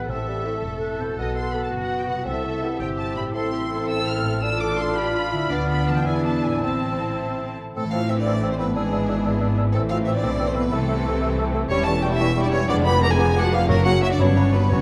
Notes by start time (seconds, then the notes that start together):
Already playing: A2 B3 C4 F#6
0.00 E4
0.04 A4
0.09 A1 A2 C4 E4 A4 E5 E6
0.28 G3
0.45 A3 C4 E4 A4 E5
0.64 E1 E6
0.81 F#6
1.00 B2 C4 E4 A4 E5 G6
1.05 B3
1.09 F#4
1.17 B1 B3 F#4 D#5 F#6
1.36 C6
1.54 B3 F#4 B4 B5
1.63 A5
1.72 F#1 F#4
1.81 F#5
1.99 G5
2.08 C3 B3 F#4 B4 F#5
2.12 G3
2.17 E4
2.26 C2 C4 E4 A4 E5 E6
2.45 A3
2.62 G3 B3 E4 G4 E5
2.80 G1 C4 G4 G5 E6
2.98 A5
3.16 A2 G3 E4 G4 E5 B5
3.20 A3
3.25 E4
3.33 A1 C4 E4 A4 E5 C6 E6
3.52 G4
3.70 A4
3.88 E6
4.07 F6
4.23 A2
4.28 B3
4.32 D4
4.37 F4
4.42 D4 F4 A4 B4 D5 E6 F6
4.60 D6
4.77 C6
4.95 G4 B5
5.13 F4
5.32 D3 E4
5.37 B3
5.41 D4
5.46 B3 F4
5.50 D2 B3 D4 F4 B4 D5
5.69 B5
5.87 E3 A5
5.92 B3
5.97 D4 G5
6.01 B3 E4
6.06 E2 D4 E4 B4 D5 G#5 E6
6.25 A5
6.44 A2 G#5
6.50 A3
6.54 C4
6.59 A1 C4 E4 A4 C5
6.63 C4 A5
7.75 A1 A2 E3 A3 C4 A4 E6
7.84 E3
7.92 A3 C4 F4 F5 E6
8.01 C4
8.08 C4 E4 E5 E6
8.18 D4 A4 D5
8.26 C4 C5 E6
8.34 E5
8.42 C4 C5 E6
8.50 C4 A4 C5
8.57 B3 C4 E4 B4 E6
8.67 C4
8.75 G#1 G#2 E3 G#3 B3 D4 G#4 E6
8.84 G#3
8.92 B3 D4 E6
9.00 D4
9.08 D4 E4 E6
9.16 B4
9.24 D4 D5 E6
9.33 E5
9.41 D4 D5 E6
9.50 B4
9.57 D4 E4 E6
9.66 D4
9.73 A1 A2 E3 A3 C4 A4 E6
9.83 E3
9.89 A3 C4 F4 F5 E6
9.99 C4
10.05 C4 E4 E5 E6
10.13 D4 A4 D5
10.23 B1 B2 C4 C5 E6
10.31 E5
10.39 C4 C5 E6
10.47 C4 A4 C5
10.54 B3 C4 E4 B4 E6
10.63 C4
10.71 C2 C3 E3 A3 C4 A4 E6
10.80 A3
10.88 A3 C4 E6
10.96 E4
11.04 A3 A4 E6
11.12 C5
11.21 A3 E5 E6
11.29 A5
11.37 A3 E5 E6
11.45 C5
11.53 A3 A4 E6
11.62 E4
11.69 E1 E2 G3 C#4 E4 C#5 C#6
11.78 E3
11.85 E3 G3 C#4 A4 A5 C#6
11.94 C#4
12.02 G3 E4 G4 G5 C#6
12.10 C#4 E4 E5
12.19 E3 G3 C#4 C#5 C#6
12.28 G5
12.36 G3 E4 C#5 C#6
12.44 D4 G4 D5
12.51 E3 G3 C#4 C#5 C#6
12.61 G3
12.68 F1 F2 F3 G#3 B3 D4 D5 D6
12.78 F3
12.85 D3 F3 B3 B4 B5 D6
12.94 D4
13.01 F3 G#3 B3 D4 G#4 A#4 A#5 D6
13.09 G#4 B4 G#5
13.18 D3 F3 B3 D5 D6
13.35 F3 G#3 B3 D4 D5 D6
13.42 F#4 B4 F#5
13.51 D3 F3 B3 F4 G#4 F5 D6
13.60 D4
13.67 F#1 F#2 F#3 A#3 F#4 A#4 C#6
13.78 C#3
13.85 C#3 F#3 A#3 C#4 F#4 F#5 C#6
14.02 F#3 E4 F#4 E5 C#6
14.11 C#4 D4 D5
14.19 G1 G2 F#3 G3 B3 C#4 D4 C#5 B5
14.28 D3
14.36 F#3 B3 D4 B5
14.46 B3
14.53 F#3 G3 B3 D4 F#4 B4 B5
14.63 B3
14.71 F#1 F#2 F#3 B3 C#4 F#4 C#5 B5